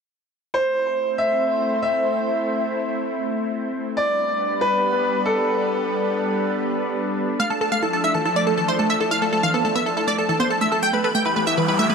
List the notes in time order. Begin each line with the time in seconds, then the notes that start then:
0.54 A3 C4 E4 C5
1.18 E5
1.83 E5
3.97 G3 B3 D4 B4 D5
4.61 B4
5.26 A4
7.40 F3 A3 A4 F5 F6
7.50 A3 A4 A5
7.61 A4 A5
7.72 A3 F5 F6
7.82 E4 A4 A5
7.93 A3 A4 A5
8.04 E4 E5 E6
8.15 E3 A4 A5
8.25 E4 A4 A5
8.36 A3 D5 D6
8.47 A3 A4 A5
8.57 E3 A4 A5
8.68 E4 C5 C6
8.79 A3 A4 A5
8.90 E4 E5 E6
9.00 E4 A4 A5
9.11 E4 F5 F6
9.22 A3 A4 A5
9.33 A3 A4 A5
9.43 E3 F5 F6
9.54 B3 A4 A5
9.65 A3 A4 A5
9.75 B3 E5 E6
9.86 E4 A4 A5
9.97 E4 A4 A5
10.08 A3 D5 D6
10.18 A4 A5
10.29 E3 A4 A5
10.40 B3 C5 C6
10.50 A4 A5
10.61 A3 E5 E6
10.72 A4 A5
10.82 E3 G3 A3 B3 G4 G5 G6, riser
10.93 A3 B4 B5
11.04 A4 B4 B5
11.15 A3 G5 G6
11.25 E4 B4 B5
11.36 A3 B4 B5
11.47 E4 E5 E6
11.57 E3 B4 B5
11.68 E4 B4 B5
11.79 A3 E5 E6
11.90 A3 B4 B5